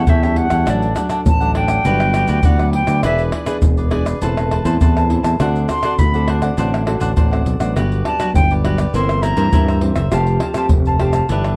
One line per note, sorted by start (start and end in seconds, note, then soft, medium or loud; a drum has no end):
0.00 0.11 F#5 medium
0.07 0.47 E2 medium
0.07 0.65 E3 medium
0.07 0.21 E4 medium
0.07 0.22 A4 medium
0.07 0.22 C#5 medium
0.07 0.39 E5 medium
0.07 0.21 G5 medium
0.07 pandeiro medium
0.07 shaker medium
0.07 surdo medium
0.23 0.63 G3 medium
0.23 0.63 C#4 medium
0.23 0.64 E4 medium
0.23 0.51 A4 soft
0.23 0.50 C#5 soft
0.23 0.49 G5 soft
0.23 pandeiro soft
0.23 tamborim medium
0.23 shaker soft
0.36 0.71 F#5 medium
0.36 pandeiro medium
0.50 0.64 E2 medium
0.50 0.65 A4 soft
0.50 0.65 C#5 soft
0.50 0.65 G5 soft
0.50 pandeiro medium
0.50 tamborim medium
0.50 shaker medium
0.50 surdo soft
0.66 0.93 A1 medium
0.66 1.24 A2 medium
0.66 0.85 F#3 medium
0.66 0.85 A3 medium
0.66 0.93 D4 medium
0.66 0.86 D4 medium
0.66 0.94 A4 medium
0.66 0.95 D5 medium
0.66 0.98 D5 medium
0.66 0.95 F#5 medium
0.66 pandeiro medium
0.66 tamborim medium
0.66 shaker medium
0.66 surdo medium
0.82 pandeiro soft
0.82 shaker soft
0.95 1.25 F#3 medium
0.95 1.25 A3 medium
0.95 1.08 D4 soft
0.95 1.25 D4 medium
0.95 1.09 A4 soft
0.95 1.09 D5 soft
0.95 1.09 F#5 soft
0.95 pandeiro medium
0.95 tamborim medium
0.95 shaker medium
0.95 surdo soft
1.09 1.20 D4 medium
1.09 1.20 A4 medium
1.09 1.20 D5 medium
1.09 1.20 F#5 medium
1.09 pandeiro soft
1.09 tamborim medium
1.09 shaker medium
1.26 1.77 A1 medium
1.26 1.83 A2 medium
1.26 1.55 A5 medium
1.26 pandeiro medium
1.26 shaker medium
1.26 surdo loud
1.40 1.81 F#3 medium
1.40 1.81 A3 medium
1.40 1.81 D4 medium
1.40 1.54 A4 soft
1.40 1.54 D5 soft
1.40 1.54 F#5 soft
1.40 pandeiro soft
1.40 shaker soft
1.54 1.69 D4 medium
1.54 1.69 A4 medium
1.54 1.68 D5 medium
1.54 1.68 F#5 medium
1.54 2.47 G5 medium
1.54 pandeiro medium
1.54 tamborim medium
1.68 1.84 A4 soft
1.68 1.84 D5 soft
1.68 1.83 F#5 soft
1.68 pandeiro medium
1.68 tamborim medium
1.68 shaker medium
1.68 surdo soft
1.85 2.23 G1 medium
1.85 2.42 G2 medium
1.85 2.11 F#3 medium
1.85 2.11 B3 medium
1.85 2.11 D4 medium
1.85 2.12 F#4 medium
1.85 2.13 G4 medium
1.85 2.13 B4 medium
1.85 2.14 D5 medium
1.85 pandeiro medium
1.85 shaker medium
1.85 surdo medium
2.00 pandeiro soft
2.00 tamborim medium
2.00 shaker soft
2.13 2.54 F#3 medium
2.13 2.55 B3 soft
2.13 2.55 D4 medium
2.13 2.27 F#4 soft
2.13 2.27 G4 medium
2.13 2.27 B4 soft
2.13 2.28 D5 medium
2.13 pandeiro medium
2.13 tamborim medium
2.13 shaker medium
2.28 2.42 D2 medium
2.28 2.38 F#4 medium
2.28 2.38 G4 medium
2.28 2.38 B4 medium
2.28 2.39 D5 medium
2.28 pandeiro medium
2.28 shaker medium
2.28 surdo soft
2.43 2.82 D2 medium
2.43 3.01 D3 soft
2.43 2.58 F#4 medium
2.43 2.58 G4 medium
2.43 2.58 B4 medium
2.43 2.58 D5 medium
2.43 2.73 F#5 medium
2.43 pandeiro medium
2.43 shaker medium
2.43 surdo loud
2.59 2.99 F#3 medium
2.59 2.99 B3 medium
2.59 2.99 D4 medium
2.59 2.87 G4 soft
2.59 2.86 B4 soft
2.59 2.86 D5 soft
2.59 pandeiro soft
2.59 tamborim medium
2.59 shaker soft
2.73 3.02 G5 medium
2.73 pandeiro medium
2.87 3.01 D2 medium
2.87 3.02 G4 soft
2.87 3.02 B4 soft
2.87 3.02 D5 soft
2.87 pandeiro medium
2.87 tamborim medium
2.87 shaker medium
2.87 surdo soft
3.03 3.29 E1 medium
3.03 3.60 E3 medium
3.03 3.43 B3 medium
3.03 3.43 D4 soft
3.03 3.31 E4 medium
3.03 3.32 G#4 medium
3.03 3.44 G#4 medium
3.03 3.32 B4 medium
3.03 3.33 D5 medium
3.03 3.22 E5 medium
3.03 pandeiro medium
3.03 tamborim medium
3.03 shaker medium
3.03 surdo medium
3.18 pandeiro soft
3.18 shaker soft
3.32 3.45 E4 soft
3.32 3.45 G#4 soft
3.32 3.46 B4 soft
3.32 3.45 D5 medium
3.32 pandeiro medium
3.32 tamborim medium
3.32 surdo soft
3.46 3.87 B3 medium
3.46 3.87 D4 medium
3.46 3.56 E4 medium
3.46 3.56 G#4 medium
3.46 3.87 G#4 medium
3.46 3.56 B4 medium
3.46 3.56 D5 medium
3.46 pandeiro medium
3.46 tamborim medium
3.46 shaker medium
3.62 4.13 E1 medium
3.62 4.19 B2 medium
3.62 pandeiro medium
3.62 shaker medium
3.62 surdo medium
3.77 3.90 G#4 soft
3.77 3.90 B4 soft
3.77 3.91 D5 soft
3.77 pandeiro soft
3.77 shaker soft
3.91 4.17 B3 medium
3.91 4.17 D4 medium
3.91 4.05 E4 medium
3.91 4.05 G#4 medium
3.91 4.17 G#4 medium
3.91 4.05 B4 medium
3.91 4.04 D5 medium
3.91 pandeiro medium
3.91 tamborim medium
4.05 4.21 G#4 soft
4.05 4.20 B4 soft
4.05 4.20 D5 soft
4.05 pandeiro medium
4.05 tamborim medium
4.05 shaker medium
4.05 surdo soft
4.21 4.60 E1 medium
4.21 4.78 A2 medium
4.21 4.49 E3 medium
4.21 4.50 A3 medium
4.21 4.50 C4 medium
4.21 4.50 E4 medium
4.21 4.50 A4 medium
4.21 4.51 B4 medium
4.21 4.50 C5 medium
4.21 4.51 A5 medium
4.21 pandeiro medium
4.21 shaker medium
4.21 surdo medium
4.37 pandeiro soft
4.37 tamborim medium
4.37 shaker soft
4.51 4.64 A4 soft
4.51 4.64 B4 soft
4.51 4.64 C5 medium
4.51 4.64 A5 medium
4.51 pandeiro medium
4.51 tamborim medium
4.51 surdo soft
4.65 4.78 E2 medium
4.65 5.05 E3 medium
4.65 5.05 A3 medium
4.65 5.06 C4 medium
4.65 5.06 E4 medium
4.65 4.75 A4 medium
4.65 5.06 A4 medium
4.65 4.75 B4 medium
4.65 4.75 C5 medium
4.65 4.75 A5 medium
4.65 pandeiro medium
4.65 shaker medium
4.65 surdo soft
4.81 5.19 E2 medium
4.81 5.37 A2 medium
4.81 4.95 A4 medium
4.81 4.95 B4 medium
4.81 4.95 C5 medium
4.81 4.95 A5 medium
4.81 pandeiro medium
4.81 shaker medium
4.81 surdo loud
4.97 5.24 B4 soft
4.97 5.24 C5 soft
4.97 5.22 A5 soft
4.97 pandeiro soft
4.97 tamborim medium
4.97 shaker soft
5.09 5.35 E3 soft
5.09 5.35 A3 medium
5.09 5.35 C4 medium
5.09 5.35 E4 medium
5.09 5.36 A4 medium
5.09 pandeiro medium
5.23 5.37 E2 medium
5.23 5.39 B4 soft
5.23 5.39 C5 soft
5.23 5.38 A5 soft
5.23 pandeiro medium
5.23 tamborim medium
5.23 shaker medium
5.23 surdo soft
5.40 5.65 D2 loud
5.40 5.96 D3 medium
5.40 5.79 C4 soft
5.40 5.67 D4 medium
5.40 5.80 F#4 soft
5.40 5.80 A4 medium
5.40 5.67 C5 medium
5.40 5.68 D5 medium
5.40 5.68 F#5 medium
5.40 pandeiro medium
5.40 tamborim medium
5.40 shaker medium
5.40 surdo medium
5.56 pandeiro soft
5.56 shaker soft
5.68 5.82 D4 soft
5.68 5.82 C5 medium
5.68 5.83 D5 soft
5.68 5.83 F#5 soft
5.68 6.00 C6 medium
5.68 pandeiro medium
5.68 tamborim medium
5.68 shaker medium
5.68 surdo soft
5.83 6.09 C4 medium
5.83 5.93 D4 medium
5.83 6.09 F#4 medium
5.83 6.09 A4 medium
5.83 5.93 C5 medium
5.83 5.93 D5 medium
5.83 5.93 F#5 medium
5.83 pandeiro medium
5.83 tamborim medium
5.83 shaker medium
5.99 6.49 D2 medium
5.99 6.56 A2 medium
5.99 6.29 B5 medium
5.99 pandeiro medium
5.99 shaker medium
5.99 surdo loud
6.13 6.39 C4 medium
6.13 6.39 F#4 medium
6.13 6.40 A4 medium
6.13 6.27 C5 soft
6.13 6.27 D5 soft
6.13 6.27 F#5 soft
6.13 pandeiro soft
6.13 shaker soft
6.27 6.42 D4 medium
6.27 6.42 C5 medium
6.27 6.42 D5 medium
6.27 6.41 F#5 medium
6.27 pandeiro medium
6.27 tamborim medium
6.42 6.53 C4 medium
6.42 6.53 F#4 medium
6.42 6.53 A4 medium
6.42 6.57 C5 soft
6.42 6.57 D5 soft
6.42 6.56 F#5 soft
6.42 pandeiro medium
6.42 tamborim medium
6.42 shaker medium
6.42 surdo soft
6.57 6.96 A1 medium
6.57 7.14 D3 medium
6.57 6.83 C4 medium
6.57 6.84 D4 medium
6.57 6.83 F#4 medium
6.57 6.83 A4 medium
6.57 6.85 C5 medium
6.57 6.86 D5 medium
6.57 6.86 F#5 medium
6.57 pandeiro medium
6.57 shaker medium
6.57 surdo medium
6.74 pandeiro soft
6.74 tamborim medium
6.74 shaker soft
6.86 7.27 C4 medium
6.86 6.99 D4 soft
6.86 7.27 F#4 medium
6.86 7.27 A4 medium
6.86 7.00 C5 soft
6.86 7.00 D5 soft
6.86 7.00 F#5 soft
6.86 pandeiro medium
6.86 tamborim medium
7.00 7.14 A1 medium
7.00 7.10 D4 medium
7.00 7.11 C5 medium
7.00 7.11 D5 medium
7.00 7.11 F#5 medium
7.00 pandeiro medium
7.00 shaker medium
7.00 surdo soft
7.16 7.43 A1 medium
7.16 7.73 A2 medium
7.16 7.30 D4 medium
7.16 7.31 C5 medium
7.16 7.31 D5 medium
7.16 7.30 F#5 medium
7.16 pandeiro medium
7.16 shaker medium
7.16 surdo medium
7.31 7.57 C4 medium
7.31 7.57 F#4 medium
7.31 7.57 A4 medium
7.31 7.61 C5 soft
7.31 7.60 D5 soft
7.31 7.59 F#5 soft
7.31 pandeiro soft
7.31 tamborim medium
7.31 shaker soft
7.46 7.59 B1 medium
7.46 pandeiro medium
7.46 shaker medium
7.60 7.74 A1 medium
7.60 8.15 F#3 medium
7.60 8.15 B3 medium
7.60 8.15 D4 medium
7.60 7.75 C5 soft
7.60 7.75 D5 soft
7.60 7.74 F#5 soft
7.60 pandeiro medium
7.60 tamborim medium
7.60 shaker medium
7.60 surdo soft
7.76 8.01 G1 medium
7.76 8.33 G2 medium
7.76 8.04 F#4 medium
7.76 8.05 G4 medium
7.76 8.05 B4 medium
7.76 8.05 D5 medium
7.76 pandeiro medium
7.76 tamborim medium
7.76 shaker medium
7.76 surdo medium
7.92 pandeiro soft
7.92 shaker soft
8.05 8.18 F#4 soft
8.05 8.19 G4 soft
8.05 8.19 B4 soft
8.05 8.20 D5 soft
8.05 8.33 A5 medium
8.05 pandeiro medium
8.05 tamborim medium
8.05 surdo soft
8.20 8.60 F#3 medium
8.20 8.60 B3 medium
8.20 8.60 D4 medium
8.20 8.29 F#4 medium
8.20 8.29 G4 medium
8.20 8.29 B4 medium
8.20 8.30 D5 medium
8.20 pandeiro medium
8.20 tamborim medium
8.20 shaker medium
8.34 8.85 G1 medium
8.34 8.92 D3 medium
8.34 8.53 G5 medium
8.34 pandeiro medium
8.34 shaker medium
8.34 surdo medium
8.50 8.64 G4 soft
8.50 8.64 B4 soft
8.50 8.64 D5 soft
8.50 pandeiro soft
8.50 shaker soft
8.65 8.82 F#3 soft
8.65 8.82 B3 medium
8.65 8.82 D4 medium
8.65 8.78 F#4 medium
8.65 8.79 G4 medium
8.65 8.79 B4 medium
8.65 8.78 D5 medium
8.65 pandeiro medium
8.65 tamborim medium
8.78 8.94 G4 soft
8.78 8.93 B4 soft
8.78 8.93 D5 soft
8.78 pandeiro medium
8.78 tamborim medium
8.78 shaker medium
8.78 surdo soft
8.94 9.32 G1 medium
8.94 9.50 G2 medium
8.94 9.34 E3 soft
8.94 9.34 A#3 medium
8.94 9.34 C4 medium
8.94 9.22 E4 medium
8.94 9.22 A#4 medium
8.94 9.23 C5 medium
8.94 9.23 E5 medium
8.94 9.24 C6 medium
8.94 pandeiro medium
8.94 shaker medium
8.94 surdo medium
9.09 pandeiro soft
9.09 tamborim medium
9.09 shaker soft
9.22 9.35 E4 soft
9.22 9.36 A#4 soft
9.22 9.36 C5 soft
9.22 9.37 E5 medium
9.22 9.82 A#5 medium
9.22 pandeiro medium
9.22 tamborim medium
9.22 shaker medium
9.37 9.50 G2 medium
9.37 9.77 E3 medium
9.37 9.78 A#3 medium
9.37 9.78 C4 medium
9.37 9.47 E4 medium
9.37 9.47 A#4 medium
9.37 9.47 C5 medium
9.37 9.47 E5 medium
9.37 pandeiro medium
9.37 shaker medium
9.37 surdo soft
9.52 9.90 G2 medium
9.52 10.09 G2 medium
9.52 9.66 E4 medium
9.52 9.67 A#4 medium
9.52 9.67 C5 medium
9.52 9.67 E5 medium
9.52 pandeiro medium
9.52 shaker medium
9.52 surdo medium
9.68 9.97 A#4 soft
9.68 9.96 C5 soft
9.68 9.95 E5 soft
9.68 pandeiro soft
9.68 tamborim medium
9.68 shaker soft
9.81 10.00 E3 medium
9.81 10.00 A#3 medium
9.81 10.00 C4 medium
9.81 pandeiro medium
9.96 10.09 F#1 medium
9.96 10.11 A#4 soft
9.96 10.11 C5 soft
9.96 10.10 E5 soft
9.96 pandeiro medium
9.96 tamborim medium
9.96 shaker medium
9.96 surdo soft
10.11 10.37 F1 medium
10.11 10.68 F3 medium
10.11 10.51 A3 medium
10.11 10.51 C4 medium
10.11 10.52 G4 medium
10.11 10.40 G4 medium
10.11 10.40 C5 medium
10.11 10.41 F5 medium
10.11 10.41 A5 medium
10.11 pandeiro medium
10.11 tamborim medium
10.11 shaker medium
10.11 surdo medium
10.26 pandeiro soft
10.26 shaker soft
10.40 10.55 G4 soft
10.40 10.55 C5 medium
10.40 10.56 F5 soft
10.40 10.56 A5 medium
10.40 pandeiro medium
10.40 tamborim medium
10.40 surdo soft
10.54 10.95 A3 medium
10.54 10.95 C4 medium
10.54 10.95 G4 medium
10.54 10.65 G4 medium
10.54 10.65 C5 medium
10.54 10.66 F5 medium
10.54 10.66 A5 medium
10.54 pandeiro medium
10.54 tamborim medium
10.54 shaker medium
10.69 11.22 F1 medium
10.69 pandeiro medium
10.69 shaker medium
10.69 surdo loud
10.85 10.99 C5 soft
10.85 11.00 F5 soft
10.85 11.00 A5 soft
10.85 pandeiro soft
10.85 shaker soft
11.00 11.25 A3 medium
11.00 11.25 C4 medium
11.00 11.14 G4 medium
11.00 11.25 G4 medium
11.00 11.14 C5 medium
11.00 11.14 F5 medium
11.00 11.13 A5 medium
11.00 pandeiro medium
11.00 tamborim medium
11.13 11.29 C5 soft
11.13 11.29 F5 soft
11.13 11.28 A5 soft
11.13 pandeiro medium
11.13 tamborim medium
11.13 shaker medium
11.13 surdo soft
11.29 11.56 G1 medium
11.29 11.56 G2 medium
11.29 11.56 E3 medium
11.29 11.56 B3 medium
11.29 11.56 D4 medium
11.29 11.56 G4 medium
11.29 11.56 B4 medium
11.29 11.56 E5 medium
11.29 pandeiro medium
11.29 shaker medium
11.29 surdo medium
11.44 pandeiro soft
11.44 tamborim medium
11.44 shaker soft